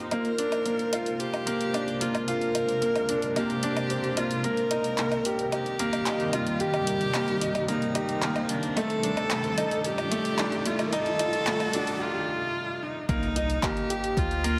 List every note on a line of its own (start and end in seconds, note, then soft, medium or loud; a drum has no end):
0.00 0.12 A#3 medium
0.00 0.14 D#4 medium
0.00 0.14 G4 medium
0.00 4.40 C5 medium
0.11 4.40 C3 medium
0.11 4.40 G#3 medium
0.11 0.27 A#3 medium
0.11 4.40 D4 medium
0.11 8.73 A#4 medium
0.11 1.21 A#4 loud
0.11 closed hi-hat soft
0.11 low woodblock medium
0.25 closed hi-hat soft
0.38 0.54 D4 medium
0.38 closed hi-hat medium
0.52 closed hi-hat soft
0.52 low woodblock medium
0.66 0.91 A#3 medium
0.66 closed hi-hat soft
0.79 closed hi-hat soft
0.92 1.18 F4 medium
0.92 closed hi-hat medium
0.92 low woodblock medium
1.06 closed hi-hat soft
1.20 2.02 G4 loud
1.20 closed hi-hat soft
1.34 closed hi-hat soft
1.34 low woodblock medium
1.47 1.72 A#3 medium
1.47 closed hi-hat medium
1.61 closed hi-hat soft
1.73 1.99 D4 medium
1.73 closed hi-hat soft
1.73 low woodblock medium
1.88 closed hi-hat soft
2.01 2.16 A#3 medium
2.01 2.29 F4 medium
2.01 closed hi-hat medium
2.15 closed hi-hat soft
2.15 low woodblock medium
2.28 2.43 F4 medium
2.28 3.35 A#4 loud
2.28 closed hi-hat soft
2.41 closed hi-hat soft
2.55 closed hi-hat medium
2.55 low woodblock medium
2.69 closed hi-hat soft
2.82 3.07 A#3 medium
2.82 closed hi-hat soft
2.96 closed hi-hat soft
2.96 low woodblock medium
3.09 3.35 D4 medium
3.09 closed hi-hat medium
3.22 closed hi-hat soft
3.36 3.51 A#3 medium
3.36 4.19 G4 loud
3.36 closed hi-hat soft
3.36 low woodblock medium
3.50 closed hi-hat soft
3.63 3.89 D4 medium
3.63 closed hi-hat medium
3.77 closed hi-hat soft
3.77 low woodblock medium
3.90 4.06 C4 medium
3.90 closed hi-hat soft
4.04 closed hi-hat soft
4.17 4.43 A#3 medium
4.17 4.45 F4 medium
4.17 closed hi-hat medium
4.17 low woodblock medium
4.31 closed hi-hat soft
4.44 11.97 C3 medium
4.44 11.97 D#3 medium
4.44 8.73 G3 medium
4.44 4.60 A#3 medium
4.44 5.53 A#4 loud
4.44 6.58 D5 medium
4.44 closed hi-hat soft
4.44 riser medium
4.57 closed hi-hat soft
4.71 4.87 D#4 medium
4.71 closed hi-hat medium
4.71 low woodblock medium
4.84 closed hi-hat soft
4.98 5.24 A#3 medium
4.98 clap medium
4.98 closed hi-hat soft
5.12 closed hi-hat soft
5.12 low woodblock medium
5.25 5.51 G4 medium
5.25 closed hi-hat medium
5.39 closed hi-hat soft
5.52 6.35 G4 loud
5.52 closed hi-hat soft
5.52 low woodblock medium
5.66 closed hi-hat soft
5.79 6.05 A#3 loud
5.79 closed hi-hat medium
5.93 closed hi-hat soft
5.93 low woodblock medium
6.06 6.32 D#4 medium
6.06 clap medium
6.06 closed hi-hat soft
6.20 closed hi-hat soft
6.33 6.49 A#3 medium
6.33 6.62 F4 medium
6.33 closed hi-hat medium
6.33 low woodblock medium
6.47 closed hi-hat soft
6.60 7.68 G4 loud
6.60 6.76 G4 medium
6.60 8.74 C5 medium
6.60 closed hi-hat soft
6.74 closed hi-hat soft
6.74 low woodblock medium
6.87 closed hi-hat medium
7.01 closed hi-hat soft
7.14 7.40 A#3 medium
7.14 clap medium
7.14 closed hi-hat soft
7.14 low woodblock medium
7.28 closed hi-hat soft
7.41 7.67 D#4 medium
7.41 closed hi-hat medium
7.55 closed hi-hat soft
7.55 low woodblock medium
7.68 7.84 A#3 medium
7.68 8.51 D#4 loud
7.68 closed hi-hat soft
7.82 closed hi-hat soft
7.95 8.21 G4 medium
7.95 closed hi-hat medium
7.95 low woodblock medium
8.09 closed hi-hat soft
8.22 8.48 A#3 medium
8.22 clap medium
8.22 closed hi-hat soft
8.36 closed hi-hat soft
8.36 low woodblock medium
8.49 8.78 D4 medium
8.49 closed hi-hat medium
8.63 closed hi-hat soft
8.76 11.98 G3 medium
8.76 8.92 A3 loud
8.76 11.98 F4 medium
8.76 11.98 A4 medium
8.76 9.86 A4 loud
8.76 11.98 D5 medium
8.76 closed hi-hat soft
8.76 low woodblock medium
8.90 closed hi-hat soft
9.03 9.19 D4 medium
9.03 closed hi-hat medium
9.17 closed hi-hat soft
9.17 low woodblock medium
9.30 9.56 A3 medium
9.30 clap medium
9.30 closed hi-hat soft
9.44 closed hi-hat soft
9.58 9.83 D#4 medium
9.58 closed hi-hat medium
9.58 low woodblock medium
9.71 closed hi-hat soft
9.84 10.68 G4 loud
9.84 closed hi-hat soft
9.98 closed hi-hat soft
9.98 low woodblock medium
10.11 10.37 A3 loud
10.11 closed hi-hat medium
10.25 closed hi-hat soft
10.38 10.64 D4 medium
10.38 clap medium
10.38 closed hi-hat soft
10.38 low woodblock medium
10.52 closed hi-hat soft
10.66 10.81 A3 medium
10.66 10.87 F4 medium
10.66 closed hi-hat medium
10.79 closed hi-hat soft
10.79 low woodblock medium
10.86 10.95 A#4 medium
10.93 11.08 D#4 loud
10.93 12.03 A4 loud
10.93 closed hi-hat soft
11.06 closed hi-hat soft
11.19 closed hi-hat medium
11.19 low woodblock medium
11.33 closed hi-hat soft
11.46 11.72 A3 medium
11.46 clap medium
11.46 closed hi-hat soft
11.60 closed hi-hat soft
11.60 low woodblock medium
11.73 12.00 D4 medium
11.73 closed hi-hat medium
11.87 closed hi-hat soft
12.01 12.85 F4 loud
12.83 13.09 D#4 medium
13.08 13.58 C2 loud
13.08 13.24 A#3 medium
13.08 13.65 D#4 loud
13.08 14.59 G4 medium
13.08 14.59 C5 medium
13.08 14.59 D#5 medium
13.08 14.59 A#5 medium
13.08 kick loud
13.08 closed hi-hat soft
13.08 impact medium
13.23 closed hi-hat soft
13.36 13.51 D#4 medium
13.36 closed hi-hat medium
13.50 closed hi-hat soft
13.63 13.89 A#3 medium
13.63 14.19 G4 loud
13.63 kick loud
13.63 clap medium
13.63 closed hi-hat soft
13.63 low woodblock medium
13.77 closed hi-hat soft
13.90 14.16 G4 medium
13.90 closed hi-hat medium
14.04 closed hi-hat soft
14.17 14.59 D2 loud
14.17 14.59 F4 loud
14.17 kick loud
14.17 closed hi-hat soft
14.31 closed hi-hat soft
14.44 14.59 A#3 loud
14.44 closed hi-hat medium